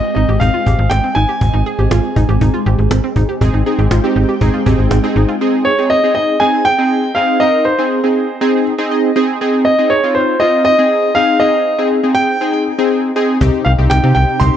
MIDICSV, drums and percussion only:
0, 0, Header, 1, 2, 480
1, 0, Start_track
1, 0, Key_signature, -4, "major"
1, 0, Tempo, 500000
1, 1356, Time_signature, 4, 2, 24, 8
1, 13986, End_track
2, 0, Start_track
2, 0, Title_t, "Cajon"
2, 35, Note_on_c, 9, 38, 28
2, 131, Note_off_c, 9, 38, 0
2, 158, Note_on_c, 9, 38, 37
2, 254, Note_off_c, 9, 38, 0
2, 276, Note_on_c, 9, 38, 36
2, 372, Note_off_c, 9, 38, 0
2, 396, Note_on_c, 9, 36, 88
2, 492, Note_off_c, 9, 36, 0
2, 639, Note_on_c, 9, 36, 88
2, 735, Note_off_c, 9, 36, 0
2, 757, Note_on_c, 9, 38, 33
2, 853, Note_off_c, 9, 38, 0
2, 874, Note_on_c, 9, 38, 113
2, 970, Note_off_c, 9, 38, 0
2, 996, Note_on_c, 9, 38, 33
2, 1092, Note_off_c, 9, 38, 0
2, 1119, Note_on_c, 9, 38, 42
2, 1215, Note_off_c, 9, 38, 0
2, 1240, Note_on_c, 9, 38, 32
2, 1336, Note_off_c, 9, 38, 0
2, 1356, Note_on_c, 9, 36, 111
2, 1452, Note_off_c, 9, 36, 0
2, 1474, Note_on_c, 9, 38, 31
2, 1570, Note_off_c, 9, 38, 0
2, 1596, Note_on_c, 9, 38, 38
2, 1692, Note_off_c, 9, 38, 0
2, 1717, Note_on_c, 9, 38, 31
2, 1813, Note_off_c, 9, 38, 0
2, 1835, Note_on_c, 9, 38, 111
2, 1931, Note_off_c, 9, 38, 0
2, 1956, Note_on_c, 9, 38, 29
2, 2052, Note_off_c, 9, 38, 0
2, 2077, Note_on_c, 9, 36, 90
2, 2173, Note_off_c, 9, 36, 0
2, 2195, Note_on_c, 9, 38, 36
2, 2291, Note_off_c, 9, 38, 0
2, 2316, Note_on_c, 9, 36, 90
2, 2412, Note_off_c, 9, 36, 0
2, 2438, Note_on_c, 9, 38, 27
2, 2534, Note_off_c, 9, 38, 0
2, 2557, Note_on_c, 9, 38, 45
2, 2653, Note_off_c, 9, 38, 0
2, 2676, Note_on_c, 9, 38, 33
2, 2772, Note_off_c, 9, 38, 0
2, 2793, Note_on_c, 9, 38, 115
2, 2889, Note_off_c, 9, 38, 0
2, 2915, Note_on_c, 9, 38, 33
2, 3011, Note_off_c, 9, 38, 0
2, 3033, Note_on_c, 9, 36, 93
2, 3129, Note_off_c, 9, 36, 0
2, 3158, Note_on_c, 9, 38, 31
2, 3254, Note_off_c, 9, 38, 0
2, 3276, Note_on_c, 9, 36, 110
2, 3372, Note_off_c, 9, 36, 0
2, 3393, Note_on_c, 9, 38, 32
2, 3489, Note_off_c, 9, 38, 0
2, 3514, Note_on_c, 9, 38, 39
2, 3610, Note_off_c, 9, 38, 0
2, 3635, Note_on_c, 9, 38, 33
2, 3731, Note_off_c, 9, 38, 0
2, 3754, Note_on_c, 9, 38, 110
2, 3850, Note_off_c, 9, 38, 0
2, 3874, Note_on_c, 9, 38, 28
2, 3970, Note_off_c, 9, 38, 0
2, 4115, Note_on_c, 9, 38, 36
2, 4211, Note_off_c, 9, 38, 0
2, 4236, Note_on_c, 9, 36, 91
2, 4332, Note_off_c, 9, 36, 0
2, 4357, Note_on_c, 9, 38, 28
2, 4453, Note_off_c, 9, 38, 0
2, 4478, Note_on_c, 9, 36, 88
2, 4574, Note_off_c, 9, 36, 0
2, 4713, Note_on_c, 9, 38, 121
2, 4809, Note_off_c, 9, 38, 0
2, 4835, Note_on_c, 9, 38, 32
2, 4931, Note_off_c, 9, 38, 0
2, 4956, Note_on_c, 9, 38, 41
2, 5052, Note_off_c, 9, 38, 0
2, 5077, Note_on_c, 9, 38, 33
2, 5173, Note_off_c, 9, 38, 0
2, 12875, Note_on_c, 9, 36, 116
2, 12971, Note_off_c, 9, 36, 0
2, 12993, Note_on_c, 9, 38, 34
2, 13089, Note_off_c, 9, 38, 0
2, 13114, Note_on_c, 9, 38, 41
2, 13210, Note_off_c, 9, 38, 0
2, 13235, Note_on_c, 9, 38, 33
2, 13331, Note_off_c, 9, 38, 0
2, 13353, Note_on_c, 9, 38, 112
2, 13449, Note_off_c, 9, 38, 0
2, 13473, Note_on_c, 9, 38, 30
2, 13569, Note_off_c, 9, 38, 0
2, 13714, Note_on_c, 9, 38, 36
2, 13810, Note_off_c, 9, 38, 0
2, 13835, Note_on_c, 9, 36, 91
2, 13931, Note_off_c, 9, 36, 0
2, 13956, Note_on_c, 9, 38, 28
2, 13986, Note_off_c, 9, 38, 0
2, 13986, End_track
0, 0, End_of_file